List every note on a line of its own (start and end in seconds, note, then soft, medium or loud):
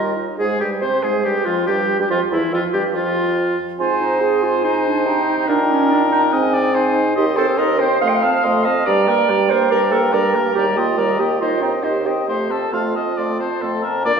0.00 0.14 D#2 medium
0.00 0.14 G3 medium
0.00 0.18 F4 medium
0.00 0.14 A#4 medium
0.00 0.14 D#5 medium
0.16 0.38 D#4 medium
0.38 0.59 G#2 medium
0.38 0.59 G#3 medium
0.38 0.48 G#4 medium
0.38 0.59 G#4 medium
0.38 0.45 G#4 medium
0.59 0.84 G2 soft
0.59 0.81 G3 soft
0.59 0.82 G4 medium
0.59 0.70 G4 soft
0.59 0.67 G4 soft
0.81 1.03 C3 medium
0.81 1.03 C4 medium
0.81 1.04 C5 medium
0.81 1.03 C5 medium
1.03 1.27 G#2 medium
1.03 1.25 G#3 medium
1.03 1.24 G#4 medium
1.03 1.25 G#4 medium
1.03 1.25 G#4 soft
1.24 1.46 G2 soft
1.24 1.35 G3 soft
1.24 1.46 G4 medium
1.24 1.48 G4 soft
1.24 1.47 G4 soft
1.45 1.67 F2 soft
1.45 1.67 F3 soft
1.45 1.69 F4 medium
1.45 1.68 F4 medium
1.45 1.66 F4 soft
1.67 1.99 G2 medium
1.67 1.99 G3 medium
1.67 1.99 G4 medium
1.67 1.99 G4 soft
1.67 1.99 G4 medium
1.99 2.05 G2 soft
1.99 2.05 G3 soft
1.99 2.04 G4 soft
1.99 2.10 G4 soft
1.99 2.05 G4 medium
2.10 2.20 F2 medium
2.10 2.20 F3 soft
2.10 2.30 F4 medium
2.10 2.16 F4 medium
2.10 2.20 F4 medium
2.31 2.41 E2 soft
2.31 2.53 E3 soft
2.31 2.41 E4 medium
2.31 2.51 E4 soft
2.31 2.53 E4 soft
2.52 2.62 F2 medium
2.52 2.74 F3 soft
2.52 2.58 F4 medium
2.52 2.75 F4 medium
2.52 2.63 F4 medium
2.73 2.96 G2 medium
2.73 2.84 G3 medium
2.73 2.96 G4 medium
2.73 2.83 G4 medium
2.73 2.95 G4 medium
2.94 3.58 F2 medium
2.94 3.57 F3 medium
2.94 3.58 F4 medium
2.94 3.57 F4 medium
2.94 3.58 F4 medium
3.79 5.08 G#2 soft
3.79 4.60 C4 soft
3.79 4.02 F4 medium
3.79 4.61 C5 soft
3.79 4.19 G#5 soft
4.01 4.23 D#4 medium
4.21 4.44 G#4 medium
4.21 5.08 G#5 soft
4.43 4.66 F4 medium
4.64 4.87 D#4 medium
4.64 6.71 D#4 medium
4.64 5.49 C5 medium
4.85 5.07 D4 medium
5.06 5.48 C3 medium
5.06 5.37 D#4 medium
5.06 5.47 G5 soft
5.38 5.48 D#4 medium
5.48 6.31 A#2 medium
5.48 5.58 D4 medium
5.48 6.34 A#4 medium
5.48 6.35 G5 medium
5.69 5.90 C#4 medium
5.91 6.01 D4 medium
6.12 6.21 D#4 medium
6.32 7.15 G#2 medium
6.32 6.94 C4 medium
6.32 6.55 D#5 medium
6.32 6.74 G#5 soft
6.54 6.76 D5 medium
6.74 7.16 D#4 medium
6.74 7.15 C5 medium
6.74 7.15 G#5 medium
7.16 7.53 D#2 medium
7.16 7.39 D#4 soft
7.16 7.26 G4 medium
7.16 7.38 D#5 medium
7.16 7.38 C6 medium
7.36 7.60 C4 medium
7.36 7.47 A4 medium
7.36 7.59 C5 soft
7.36 7.60 G5 medium
7.58 7.96 D#2 medium
7.58 7.82 D#4 medium
7.58 7.80 A#4 medium
7.58 7.81 D#5 medium
7.58 7.81 C6 medium
7.79 8.02 C4 medium
7.79 8.01 C5 medium
7.79 8.01 G5 medium
8.01 8.39 F2 medium
8.01 8.25 A3 medium
8.01 8.25 D#5 medium
8.01 8.10 F5 medium
8.01 8.24 C6 medium
8.08 8.16 G5 medium
8.15 8.64 F5 medium
8.22 8.47 C4 soft
8.22 8.45 F5 medium
8.22 8.46 A5 medium
8.44 8.82 F2 medium
8.44 8.68 A3 medium
8.44 8.66 D#5 medium
8.44 8.67 C6 medium
8.65 8.87 C4 medium
8.65 8.88 D#5 medium
8.65 8.85 F5 medium
8.65 8.86 A5 soft
8.86 9.24 G2 medium
8.86 9.09 G3 soft
8.86 9.10 D5 medium
8.86 9.52 D5 medium
8.86 9.10 A#5 medium
9.08 9.31 A#3 medium
9.08 9.31 A#4 soft
9.08 9.31 G5 medium
9.29 9.66 G2 medium
9.29 9.52 G3 soft
9.29 9.52 D5 medium
9.29 9.52 A#5 medium
9.50 9.71 A#3 medium
9.50 9.70 A#4 medium
9.50 9.71 C5 medium
9.50 9.71 G5 medium
9.71 10.08 G2 medium
9.71 9.93 G3 medium
9.71 9.81 A#4 medium
9.71 9.94 D5 medium
9.71 9.93 A#5 medium
9.91 10.15 A#3 soft
9.91 10.01 A4 medium
9.91 10.14 A#4 medium
9.91 10.16 G5 soft
10.13 10.51 G2 medium
10.13 10.36 G3 medium
10.13 10.54 A#4 medium
10.13 10.36 D5 medium
10.13 10.36 A#5 soft
10.35 10.55 A#3 soft
10.35 10.56 A#4 soft
10.35 10.56 G5 soft
10.55 10.94 D#2 medium
10.55 10.79 G3 soft
10.55 10.65 G4 medium
10.55 10.79 D5 medium
10.55 10.79 A#5 soft
10.77 10.99 A#3 soft
10.77 10.97 F4 medium
10.77 11.00 D#5 soft
10.77 11.00 G5 soft
10.98 11.36 D#2 medium
10.98 11.21 G3 soft
10.98 11.18 A#4 medium
10.98 11.21 D5 soft
10.98 11.22 A#5 soft
11.19 11.41 A#3 soft
11.19 11.29 G4 medium
11.19 11.41 D#5 soft
11.19 11.41 G5 soft
11.40 11.79 D#2 soft
11.40 11.64 D#4 soft
11.40 11.61 F4 medium
11.40 11.64 C5 soft
11.40 11.64 D#5 soft
11.62 11.85 C4 soft
11.62 11.72 D#4 medium
11.62 11.85 D#5 soft
11.62 11.85 G5 soft
11.83 12.23 D#2 medium
11.83 12.07 D#4 soft
11.83 12.05 G4 medium
11.83 12.08 C5 soft
11.83 12.07 D#5 soft
12.05 12.27 C4 soft
12.05 12.16 G4 medium
12.05 12.28 D#5 soft
12.05 12.28 G5 soft
12.28 12.68 F2 soft
12.28 12.52 A3 soft
12.28 12.75 G4 medium
12.28 12.52 C5 soft
12.28 12.52 C6 soft
12.50 12.74 C4 soft
12.50 12.72 A4 soft
12.50 12.75 A5 soft
12.72 13.13 F2 soft
12.72 12.97 A3 soft
12.72 13.84 F4 soft
12.72 12.94 F5 medium
12.72 12.97 C6 soft
12.95 13.18 C4 soft
12.95 13.19 D#5 medium
12.95 13.17 A5 soft
13.18 13.56 F2 soft
13.18 13.42 A3 soft
13.18 13.40 D5 medium
13.18 13.41 C6 soft
13.40 13.65 C4 soft
13.40 13.63 C5 soft
13.40 13.62 A5 soft
13.61 14.00 F2 soft
13.61 13.86 A3 soft
13.61 13.83 A4 soft
13.61 13.85 C6 soft
13.83 14.04 C4 soft
13.83 14.05 A#4 soft
13.83 14.05 A5 soft
14.05 14.10 A#2 medium
14.05 14.10 A#3 medium
14.05 14.20 D4 medium
14.05 14.20 D5 medium
14.05 14.12 D5 medium
14.16 14.20 A#2 soft